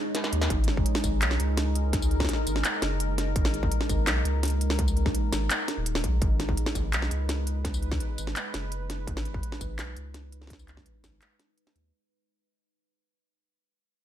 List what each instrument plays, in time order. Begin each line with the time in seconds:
Already playing: ambient pad G#3 D#4 C#5
0.15 snare, closed hi-hat
0.24 snare
0.33 sub bass D#2, closed hi-hat
0.42 snare
0.50 sub bass G#1, ambient pad A#4, kick, closed hi-hat
0.64 closed hi-hat
0.68 snare
0.77 kick
0.86 closed hi-hat
0.95 snare
1.04 sub bass G#1, kick, closed hi-hat, tambourine
1.22 sub bass B1, clap, closed hi-hat
1.31 snare
1.40 sub bass C#2, closed hi-hat
1.57 snare, closed hi-hat
1.76 closed hi-hat
1.93 kick, snare, closed hi-hat
2.02 tambourine
2.11 closed hi-hat
2.20 kick, snare
2.25 snare
2.29 snare, closed hi-hat
2.33 snare
2.47 sub bass G#1, closed hi-hat, tambourine
2.56 snare
2.64 clap, closed hi-hat
2.82 sub bass F#1, snare, closed hi-hat
3.00 closed hi-hat
3.18 snare, closed hi-hat
3.36 sub bass G#1, kick, closed hi-hat
3.45 snare
3.54 closed hi-hat
3.63 kick
3.72 closed hi-hat
3.81 snare
3.89 sub bass G#1, kick, closed hi-hat, tambourine
4.07 sub bass B1, clap, snare, closed hi-hat
4.25 sub bass C#2, closed hi-hat
4.43 snare, closed hi-hat
4.45 closed hi-hat
4.48 closed hi-hat
4.50 closed hi-hat
4.61 closed hi-hat
4.70 snare
4.79 kick, closed hi-hat
4.88 tambourine
4.97 closed hi-hat
5.06 kick, snare
5.15 closed hi-hat
5.33 sub bass G#1, snare, closed hi-hat, tambourine
5.50 clap, closed hi-hat
5.68 snare, closed hi-hat
5.77 sub bass D#1
5.86 closed hi-hat
5.95 snare
6.04 sub bass B1, kick, closed hi-hat
6.22 sub bass G#1, ambient pad B4, kick, closed hi-hat
6.40 snare, closed hi-hat
6.49 kick
6.57 closed hi-hat
6.66 snare
6.75 sub bass G#1, kick, closed hi-hat, tambourine
6.93 sub bass B1, clap, closed hi-hat
7.02 snare
7.11 sub bass C#2, closed hi-hat
7.29 snare, closed hi-hat
7.47 closed hi-hat
7.65 kick, snare, closed hi-hat
7.74 tambourine
7.83 closed hi-hat
7.92 kick, snare
8.00 closed hi-hat
8.18 sub bass G#1, closed hi-hat, tambourine
8.27 snare
8.36 clap, closed hi-hat
8.54 sub bass F#1, snare, closed hi-hat
8.72 closed hi-hat
8.90 snare, closed hi-hat
9.07 sub bass G#1, kick, closed hi-hat
9.17 snare
9.25 closed hi-hat
9.34 kick
9.43 closed hi-hat
9.52 snare
9.61 sub bass G#1, kick, closed hi-hat, tambourine
9.79 sub bass B1, clap, snare, closed hi-hat
9.97 sub bass C#2, closed hi-hat
10.14 snare, closed hi-hat
10.32 closed hi-hat
10.42 snare
10.47 kick, snare, closed hi-hat
10.53 snare
10.59 tambourine
10.68 clap, closed hi-hat
10.77 kick, snare
10.86 closed hi-hat
11.04 sub bass G#1, kick, snare, closed hi-hat, tambourine
11.22 clap, closed hi-hat
11.40 snare, closed hi-hat
11.58 closed hi-hat
11.67 snare
11.75 sub bass D#2, closed hi-hat